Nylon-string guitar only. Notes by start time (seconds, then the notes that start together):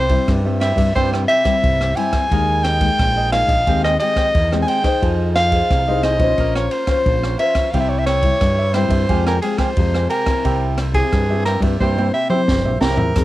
Already playing: C3
0.09 G3 C4 E4
0.28 G2
0.45 G3 C4 E4
0.77 G3 C4 E4
0.96 C3 G3 C4 E4
1.45 G3 C4 E4
1.64 G2
1.96 G3 C4 E4
2.31 D#3 G#3 A#3 D#4
2.81 G#3 A#3 D#4
2.99 A#2
3.33 G#3 A#3 D#4
3.67 D#3 G#3 C4 G4
4.01 G#3 C4 G4
4.35 D#3
4.53 G#3 C4 G4
4.84 D#4 G#4 C5
5.03 F3
5.51 D#4 G#4 C5
5.70 C3
5.88 D#4 G#4 C5
6.19 C#4 F4 C5
6.38 A#3
6.88 C#4 F4 C5
7.06 F3
7.39 C#4 F4 C5
7.74 C3 G3 C4 E4
8.23 G3 E4
8.42 G3
8.75 G3 C4 E4
9.09 F3 G#3 C4 G4
9.42 G#3 C4 G4
9.77 C3 G#3 C4 G4
10.26 C4 E4 G4
10.46 C3
10.94 C4 E4 G4
11.13 G2
11.31 C4 E4 G4
11.63 C4 E4 G4
11.81 C3 C4 E4 G4
12.30 C4 E4 G4
12.49 G2
12.82 C4 E4 G4
13.17 F3 C4 D#4 G#4